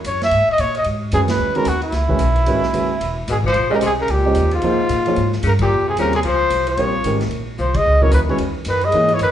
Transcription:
0.04 F#2 C#5, hi-hat pedal, ride
0.21 E5, snare, ride
0.31 G#2, ride
0.48 D#5, muted upright bass stroke
0.58 A#2 C#5, hi-hat pedal, ride
0.75 D#5, ride
0.84 G#2, ride
1.12 F#2 D#3 G#3 C#4 F#4 G#4 B4, hi-hat pedal, ride
1.28 B4, snare, ride
1.39 E2
1.55 D#3 G#3 C#4 F#4 A#4 B4, ride
1.65 D#2 F#4, hi-hat pedal, ride
1.82 E4, ride
1.92 C#2, snare, ride
2.09 D#3 G#3 C#4 F#4 B4, kick
2.19 B1, hi-hat pedal, ride
2.36 ride
2.46 G#1 D#3 G#3 C#4 F#4 B4, ride
2.63 muted upright bass stroke, snare
2.73 F#1 D#3 G#3 C#4 F#4 B4, hi-hat pedal, ride
3.00 E1, ride
3.28 G#1 B2 G#4, hi-hat pedal, ride
3.44 F3 C5, kick
3.54 A#1, ride
3.70 C#3 G#3 C#4 G4 C5 D#5
3.74 A#4
3.81 C2 C3, hi-hat pedal, ride
3.86 G#4
4.00 C#3 A#4
4.08 C#2 A#2 G4, ride
4.25 G#3 C#4 G4 C5 D#5
4.35 D#2, hi-hat pedal, ride
4.51 G#2 F4, ride
4.62 F2 F3 A#3 D#4 G#4 C5, ride
4.79 muted upright bass stroke
4.89 A#2, hi-hat pedal, ride
5.06 F3 A#3 D#4 G#4 C#5, ride
5.16 G#2, ride
5.32 snare
5.43 G2 C#3, hi-hat pedal, ride
5.47 A#4
5.59 A#2 G4, kick, ride
5.70 F2
5.87 C3 G#4
5.97 D#2 C#3 G3 C4 F4 A#4 C#5, hi-hat pedal, ride
6.13 C3 G#4, ride
6.23 C#2 F3, ride
6.27 C5
6.50 C2, hi-hat pedal, ride
6.67 F3 C#5, ride
6.77 A#1 G3 C4 F4 A#4 C#5, ride
7.04 G#1 D#3 G#3 C#4 G4 A#4, hi-hat pedal, ride
7.21 snare, ride
7.31 A#1, ride
7.58 C2 F3 C5, hi-hat pedal
7.74 G#3 D#5, kick, ride
7.86 C#2
8.01 C#3 E3 F#3 B3 E4 A#4 C#5, kick
8.11 D#2 D#3 B4, hi-hat pedal, ride
8.29 D#3 E3 G#3 C#4 F#4 B4 C#5
8.38 E2, ride
8.65 F#2 D#3, hi-hat pedal, ride
8.69 B4
8.81 D#5, ride
8.86 G#3
8.92 G#2 E3 A#3 D#4 G#4 C#5, ride
9.08 E3, ride
9.14 C#5
9.19 F#2 D#3 B4, hi-hat pedal, ride

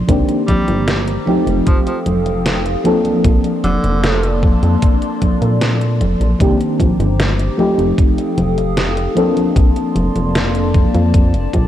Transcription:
0.07 C2 D#3 A#3 C4 D4 G4 C5 A#5 D6, kick, closed hi-hat
0.29 closed hi-hat
0.48 A#1 G3, kick, closed hi-hat, high conga
0.68 G1, closed hi-hat, high conga
0.88 snare, closed hi-hat, high conga
1.08 closed hi-hat
1.26 F3 A3 C4 D#4 G4 A4 F5 G5 D#6, high conga
1.47 F1, closed hi-hat, high conga
1.66 F3, kick, closed hi-hat, high conga
1.86 F3, closed hi-hat
2.06 F1, closed hi-hat, high conga
2.26 closed hi-hat, high conga
2.46 snare, closed hi-hat, high conga
2.66 closed hi-hat
2.84 F3 A#3 C4 D4 A4 D5 A5 C6, closed hi-hat, high conga
3.05 closed hi-hat, high conga
3.24 A#1, kick, closed hi-hat, high conga
3.44 closed hi-hat
3.64 F1 D3, closed hi-hat, high conga
3.84 F1, closed hi-hat, high conga
4.04 snare, closed hi-hat
4.23 closed hi-hat
4.43 kick, high conga
4.63 F2, closed hi-hat, high conga
4.82 kick, closed hi-hat, high conga
5.02 closed hi-hat
5.22 kick, closed hi-hat, high conga
5.42 A#2, closed hi-hat, high conga
5.61 snare, closed hi-hat, high conga
5.81 closed hi-hat
6.01 F1, closed hi-hat, high conga
6.20 A#1, closed hi-hat, high conga
6.39 C2 D#3 A#3 C4 D4 G4 C5 A#5 D6, kick, closed hi-hat, high conga
6.61 closed hi-hat
6.80 A#1, kick, closed hi-hat, high conga
6.99 G1, closed hi-hat, high conga
7.20 snare, closed hi-hat, high conga
7.39 closed hi-hat
7.57 F3 A3 C4 D#4 G4 A4 F5 G5 D#6, high conga
7.78 F1, closed hi-hat, high conga
7.98 kick, closed hi-hat, high conga
8.18 closed hi-hat
8.38 F1, closed hi-hat, high conga
8.58 closed hi-hat, high conga
8.77 snare, closed hi-hat, high conga
8.97 closed hi-hat
9.15 F3 A#3 C4 D4 A4 D5 A5 C6, closed hi-hat, high conga
9.37 closed hi-hat, high conga
9.56 A#1, kick, closed hi-hat, high conga
9.76 closed hi-hat
9.95 F1, closed hi-hat, high conga
10.15 F1, closed hi-hat, high conga
10.35 snare, closed hi-hat, high conga
10.55 closed hi-hat
10.74 D6, kick, closed hi-hat, high conga
10.94 F2, closed hi-hat, high conga
11.14 kick, closed hi-hat, high conga
11.34 F1, closed hi-hat
11.53 A#1, kick, closed hi-hat, high conga

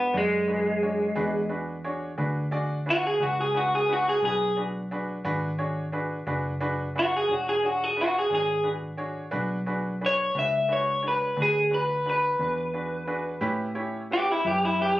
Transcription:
Already playing: G#2 B3
0.13 F#2 D4 F#4 G#4 D5
0.17 G#3
0.47 D4 F#4 G#4 B4
0.82 D4 F#4 G#4 C#5
1.15 E2 D4 F#4 G#4 B4
1.49 D4 F#4 G#4 B4
1.84 D4 F#4 G#4 C#5
2.18 D2 D4 F#4 G#4 B4
2.51 D4 F#4 G#4 D5
2.86 D4 F#4 G#4 B4
2.90 F#4
3.07 G#4
3.19 C#2 D4 F#4 G#4 B4
3.41 G#4
3.54 D4 F#4 G#4 B4
3.75 G#4
3.89 D4 F#4 G#4 B4
3.93 F#4
4.09 G#4
4.22 B1 D4 F#4 G#4 B4
4.57 D4 F#4 G#4 B4
4.91 D4 F#4 G#4 B4
5.25 G#1 D4 F#4 G#4 B4
5.58 D4 F#4 G#4 C#5
5.92 D4 F#4 G#4 B4
6.27 F#1 D4 F#4 G#4 B4
6.61 D4 F#4 G#4 B4
6.96 D4 F#4 G#4 B4
7.17 G#4
7.28 E1 D4 F#4 G#4 C#5
7.33 F#4
7.49 G#4
7.62 D4 F#4 G#4 C#5
7.84 G#4
7.97 D4 F#4 G#4 B4
8.01 F#4
8.19 G#4
8.30 G#1 D4 F#4 G#4 C#5
8.35 G#4
8.63 D4 F#4 G#4 B4
8.97 D4 F#4 G#4 C#5
9.31 B1 D4 F#4 G#4 B4
9.66 D4 F#4 G#4 B4
10.01 D4 F#4 G#4 B4
10.06 C#5
10.35 C#2 D4 F#4 G#4 B4
10.39 E5
10.68 D4 F#4 G#4 B4
10.73 C#5
11.02 D4 F#4 G#4 C#5
11.08 B4
11.36 D2 D4 F#4 G#4 B4
11.42 G#4
11.71 D4 F#4 G#4 B4
12.06 D4 F#4 G#4 B4
12.10 B4
12.39 E2 D4 F#4 G#4 B4
12.74 D4 F#4 G#4 B4
13.07 D4 F#4 G#4 B4
13.41 A2 C#4 E4 G4 B4
13.75 C#4 E4 G4 C#5
14.11 C#4 E4 G4 B4
14.32 E4
14.45 F#2 C#4 E4 G4 B4
14.65 E4
14.79 C#4 E4 G4 B4

